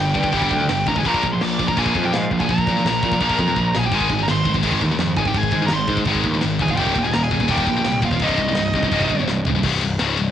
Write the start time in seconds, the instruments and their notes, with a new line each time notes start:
Already playing: distorted electric guitar G2 D3, lead electric guitar G4 G5
0.00 picked electric bass G1
0.15 distorted electric guitar G2 D3, picked electric bass G2, kick, crash
0.23 distorted electric guitar G2 D3, kick
0.32 picked electric bass G1, distorted electric guitar G2 D3 G3, kick, crash
0.42 kick
0.51 picked electric bass D2, distorted electric guitar G2 D3, kick, crash
0.60 distorted electric guitar G2 D3
0.69 picked electric bass G1, distorted electric guitar G2 D3, snare, crash
0.86 picked electric bass A1, distorted electric guitar G2 D3, lead electric guitar A#4 A#5, kick, crash
0.96 distorted electric guitar G2 D3, lead electric guitar G#4 G#5, kick
1.05 picked electric bass A#1, distorted electric guitar A#2 F3 A#3, lead electric guitar A#4 A#5, kick, crash
1.14 kick
1.23 picked electric bass A#1, distorted electric guitar A#2 F3, kick, crash
1.32 distorted electric guitar A#2 F3, lead electric guitar C5 C6
1.41 picked electric bass A#1, distorted electric guitar A#2 F3, lead electric guitar D5 D6, snare, crash
1.59 picked electric bass A#1, distorted electric guitar A#2 F3, kick, crash
1.68 distorted electric guitar A#2 F3, lead electric guitar A#4 A#5, kick
1.77 picked electric bass A#1, distorted electric guitar A#2 F3 A#3, lead electric guitar G#5, kick, crash
1.81 lead electric guitar G#4
1.86 kick
1.95 picked electric bass F2, distorted electric guitar A#2 F3, kick, crash
2.03 distorted electric guitar A#2 F3, lead electric guitar G5
2.08 lead electric guitar G4
2.12 picked electric bass G#2, distorted electric guitar A#2 F3, lead electric guitar F5, snare, crash
2.20 lead electric guitar F4
2.31 picked electric bass A#1, distorted electric guitar A#2 F3, kick, crash
2.40 distorted electric guitar A#2 F3, lead electric guitar G#5, kick
2.45 picked electric bass A#1, lead electric guitar G#4 A#5, kick, crash
2.50 distorted electric guitar A#2 F3, lead electric guitar A#4
2.58 kick
2.67 picked electric bass A#2, distorted electric guitar A#2 F3, kick, crash
2.77 distorted electric guitar A#2 F3
2.85 picked electric bass A#1, distorted electric guitar A#2 F3, snare, crash
3.03 picked electric bass A#2, distorted electric guitar A#2 F3, kick, crash
3.12 distorted electric guitar A#2 F3, kick
3.20 picked electric bass A#1, distorted electric guitar A#2 F3 A#3, kick, crash
3.29 kick
3.38 picked electric bass F2, distorted electric guitar A#2 F3, kick, crash
3.48 distorted electric guitar A#2 F3
3.56 picked electric bass A#1, distorted electric guitar A#2 F3, kick
3.75 picked electric bass A#1, distorted electric guitar A#2 F3, lead electric guitar G#4, snare
3.79 lead electric guitar G#5
3.83 distorted electric guitar A#2 F3, lead electric guitar G4 G5
3.92 picked electric bass G#1, distorted electric guitar G#2 D#3 G#3, lead electric guitar G#5, kick, crash
3.96 lead electric guitar G#4
4.01 kick
4.10 picked electric bass G#1, distorted electric guitar G#2 D#3, kick, crash
4.19 distorted electric guitar G#2 D#3, lead electric guitar A#4
4.23 distorted electric guitar D#3, lead electric guitar A#5
4.28 picked electric bass G#1, distorted electric guitar G#2 D#3, lead electric guitar C5 C6, snare, crash
4.45 picked electric bass G#1, distorted electric guitar G#2 D#3, kick, crash
4.54 distorted electric guitar G#2 D#3, kick
4.62 picked electric bass G#1, distorted electric guitar G#2 D#3 G#3, kick, crash
4.72 kick
4.81 picked electric bass D#2, distorted electric guitar G#2 D#3, kick, crash
4.91 distorted electric guitar G#2 D#3
4.99 picked electric bass F2, distorted electric guitar G#2 D#3, snare, crash
5.16 picked electric bass G#1, distorted electric guitar G#2 D#3, lead electric guitar G#4 G#5, kick, crash
5.26 distorted electric guitar G#2 D#3, lead electric guitar G4 G5, kick
5.34 picked electric bass G#1, distorted electric guitar G#2 D#3, lead electric guitar G#5, kick, crash
5.39 lead electric guitar G#4
5.43 kick
5.51 picked electric bass G#2, distorted electric guitar G#2 D#3, kick, crash
5.62 distorted electric guitar G#2 D#3, lead electric guitar A#4
5.67 lead electric guitar A#5, snare, crash
5.71 picked electric bass G#1, distorted electric guitar G#2 D#3, lead electric guitar C5 C6
5.87 picked electric bass G#2, distorted electric guitar G#2 D#3, kick, crash
5.97 distorted electric guitar G#2 D#3, kick
6.05 picked electric bass G#1, distorted electric guitar G#2 D#3 G#3, kick, crash
6.15 kick
6.23 picked electric bass D#2, distorted electric guitar G#2 D#3, kick, crash
6.34 distorted electric guitar G#2 D#3
6.41 picked electric bass G#1, distorted electric guitar G#2 D#3, snare, crash
6.59 picked electric bass F1, distorted electric guitar G#2 D#3, lead electric guitar G#4 G#5, kick, crash
6.68 distorted electric guitar G#2 D#3, lead electric guitar F5, kick
6.73 lead electric guitar F4 G5, crash
6.77 picked electric bass D#1, distorted electric guitar D#2 A#2 D#3, lead electric guitar G4, kick
6.86 kick
6.95 picked electric bass D#1, distorted electric guitar D#2 A#2, kick, crash
7.03 distorted electric guitar D#2 A#2, lead electric guitar G#5
7.08 lead electric guitar G#4
7.13 picked electric bass D#1, distorted electric guitar D#2 A#2, lead electric guitar A#4 A#5, snare, crash
7.23 lead electric guitar G#4 G#5
7.31 picked electric bass D#1, distorted electric guitar D#2 A#2, kick, crash
7.40 distorted electric guitar D#2 A#2, kick
7.47 picked electric bass D#1, distorted electric guitar D#2 A#2 D#3, lead electric guitar G4 G5, kick, crash
7.52 distorted electric guitar D#2 D#3
7.57 kick
7.66 picked electric bass A#1, distorted electric guitar D#2 A#2, kick, crash
7.71 distorted electric guitar D#2
7.76 distorted electric guitar D#2 A#2
7.84 picked electric bass C2, distorted electric guitar D#2 A#2, snare, crash
8.02 picked electric bass D#1, distorted electric guitar D#2 A#2, lead electric guitar F4 F5, kick, crash
8.11 distorted electric guitar D#2 A#2, kick
8.19 picked electric bass C1, distorted electric guitar C2 G2, lead electric guitar D#4, kick, crash
8.23 distorted electric guitar C3, lead electric guitar D#5
8.29 kick
8.37 picked electric bass C2, distorted electric guitar C2 G2, kick, crash
8.49 distorted electric guitar C2 G2
8.55 picked electric bass C1, distorted electric guitar C2 G2, snare, crash
8.73 picked electric bass C2, distorted electric guitar C2 G2, kick, crash
8.83 distorted electric guitar C2 G2, kick
8.91 picked electric bass C1, distorted electric guitar C2 G2 C3, kick, crash
9.01 kick
9.10 picked electric bass G1, distorted electric guitar C2 G2, kick, crash
9.20 distorted electric guitar C2 G2
9.27 picked electric bass C1, distorted electric guitar C2 G2, snare
9.45 picked electric bass C1, distorted electric guitar C2 G2, floor tom
9.55 distorted electric guitar C2 G2
9.63 picked electric bass C1, distorted electric guitar C2 G2 C3, kick, crash
9.81 picked electric bass C1, distorted electric guitar C2 G2, ride
9.99 picked electric bass C#1, distorted electric guitar C#2 G#2 C#3, snare, ride
10.17 picked electric bass C1, distorted electric guitar C2 G2, ride